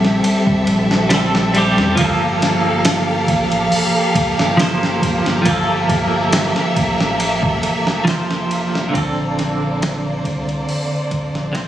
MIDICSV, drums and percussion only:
0, 0, Header, 1, 2, 480
1, 0, Start_track
1, 0, Tempo, 869565
1, 1095, Time_signature, 4, 2, 24, 8
1, 6446, End_track
2, 0, Start_track
2, 0, Title_t, "Drums"
2, 25, Note_on_c, 9, 38, 45
2, 81, Note_off_c, 9, 38, 0
2, 133, Note_on_c, 9, 51, 90
2, 188, Note_off_c, 9, 51, 0
2, 259, Note_on_c, 9, 36, 96
2, 314, Note_off_c, 9, 36, 0
2, 370, Note_on_c, 9, 51, 61
2, 425, Note_off_c, 9, 51, 0
2, 502, Note_on_c, 9, 38, 41
2, 558, Note_off_c, 9, 38, 0
2, 609, Note_on_c, 9, 51, 83
2, 611, Note_on_c, 9, 38, 112
2, 664, Note_off_c, 9, 51, 0
2, 667, Note_off_c, 9, 38, 0
2, 744, Note_on_c, 9, 38, 58
2, 799, Note_off_c, 9, 38, 0
2, 853, Note_on_c, 9, 51, 69
2, 908, Note_off_c, 9, 51, 0
2, 984, Note_on_c, 9, 38, 46
2, 1039, Note_off_c, 9, 38, 0
2, 1090, Note_on_c, 9, 51, 99
2, 1092, Note_on_c, 9, 36, 117
2, 1145, Note_off_c, 9, 51, 0
2, 1147, Note_off_c, 9, 36, 0
2, 1337, Note_on_c, 9, 51, 62
2, 1340, Note_on_c, 9, 38, 52
2, 1392, Note_off_c, 9, 51, 0
2, 1395, Note_off_c, 9, 38, 0
2, 1571, Note_on_c, 9, 51, 92
2, 1574, Note_on_c, 9, 38, 123
2, 1627, Note_off_c, 9, 51, 0
2, 1629, Note_off_c, 9, 38, 0
2, 1811, Note_on_c, 9, 36, 92
2, 1812, Note_on_c, 9, 51, 67
2, 1867, Note_off_c, 9, 36, 0
2, 1867, Note_off_c, 9, 51, 0
2, 1941, Note_on_c, 9, 51, 46
2, 1996, Note_off_c, 9, 51, 0
2, 2053, Note_on_c, 9, 46, 81
2, 2108, Note_off_c, 9, 46, 0
2, 2292, Note_on_c, 9, 36, 86
2, 2293, Note_on_c, 9, 51, 66
2, 2347, Note_off_c, 9, 36, 0
2, 2349, Note_off_c, 9, 51, 0
2, 2425, Note_on_c, 9, 38, 49
2, 2480, Note_off_c, 9, 38, 0
2, 2536, Note_on_c, 9, 51, 84
2, 2539, Note_on_c, 9, 38, 117
2, 2592, Note_off_c, 9, 51, 0
2, 2594, Note_off_c, 9, 38, 0
2, 2667, Note_on_c, 9, 38, 41
2, 2722, Note_off_c, 9, 38, 0
2, 2773, Note_on_c, 9, 36, 95
2, 2776, Note_on_c, 9, 51, 75
2, 2828, Note_off_c, 9, 36, 0
2, 2831, Note_off_c, 9, 51, 0
2, 2905, Note_on_c, 9, 38, 59
2, 2960, Note_off_c, 9, 38, 0
2, 3011, Note_on_c, 9, 51, 99
2, 3012, Note_on_c, 9, 36, 120
2, 3067, Note_off_c, 9, 36, 0
2, 3067, Note_off_c, 9, 51, 0
2, 3252, Note_on_c, 9, 36, 93
2, 3254, Note_on_c, 9, 51, 65
2, 3308, Note_off_c, 9, 36, 0
2, 3309, Note_off_c, 9, 51, 0
2, 3491, Note_on_c, 9, 51, 94
2, 3494, Note_on_c, 9, 38, 117
2, 3547, Note_off_c, 9, 51, 0
2, 3549, Note_off_c, 9, 38, 0
2, 3621, Note_on_c, 9, 38, 48
2, 3677, Note_off_c, 9, 38, 0
2, 3733, Note_on_c, 9, 36, 98
2, 3734, Note_on_c, 9, 51, 65
2, 3788, Note_off_c, 9, 36, 0
2, 3789, Note_off_c, 9, 51, 0
2, 3866, Note_on_c, 9, 38, 45
2, 3922, Note_off_c, 9, 38, 0
2, 3974, Note_on_c, 9, 51, 88
2, 4029, Note_off_c, 9, 51, 0
2, 4100, Note_on_c, 9, 36, 101
2, 4155, Note_off_c, 9, 36, 0
2, 4213, Note_on_c, 9, 51, 62
2, 4268, Note_off_c, 9, 51, 0
2, 4344, Note_on_c, 9, 38, 38
2, 4399, Note_off_c, 9, 38, 0
2, 4456, Note_on_c, 9, 51, 88
2, 4459, Note_on_c, 9, 38, 116
2, 4511, Note_off_c, 9, 51, 0
2, 4514, Note_off_c, 9, 38, 0
2, 4585, Note_on_c, 9, 38, 60
2, 4640, Note_off_c, 9, 38, 0
2, 4697, Note_on_c, 9, 51, 70
2, 4752, Note_off_c, 9, 51, 0
2, 4832, Note_on_c, 9, 38, 52
2, 4887, Note_off_c, 9, 38, 0
2, 4936, Note_on_c, 9, 36, 121
2, 4941, Note_on_c, 9, 51, 91
2, 4991, Note_off_c, 9, 36, 0
2, 4996, Note_off_c, 9, 51, 0
2, 5182, Note_on_c, 9, 51, 60
2, 5185, Note_on_c, 9, 38, 51
2, 5237, Note_off_c, 9, 51, 0
2, 5240, Note_off_c, 9, 38, 0
2, 5423, Note_on_c, 9, 51, 92
2, 5425, Note_on_c, 9, 38, 118
2, 5478, Note_off_c, 9, 51, 0
2, 5481, Note_off_c, 9, 38, 0
2, 5656, Note_on_c, 9, 36, 95
2, 5659, Note_on_c, 9, 51, 65
2, 5711, Note_off_c, 9, 36, 0
2, 5714, Note_off_c, 9, 51, 0
2, 5789, Note_on_c, 9, 51, 46
2, 5844, Note_off_c, 9, 51, 0
2, 5899, Note_on_c, 9, 46, 81
2, 5954, Note_off_c, 9, 46, 0
2, 6134, Note_on_c, 9, 36, 88
2, 6134, Note_on_c, 9, 51, 63
2, 6189, Note_off_c, 9, 36, 0
2, 6190, Note_off_c, 9, 51, 0
2, 6266, Note_on_c, 9, 38, 51
2, 6321, Note_off_c, 9, 38, 0
2, 6374, Note_on_c, 9, 51, 89
2, 6377, Note_on_c, 9, 38, 114
2, 6429, Note_off_c, 9, 51, 0
2, 6432, Note_off_c, 9, 38, 0
2, 6446, End_track
0, 0, End_of_file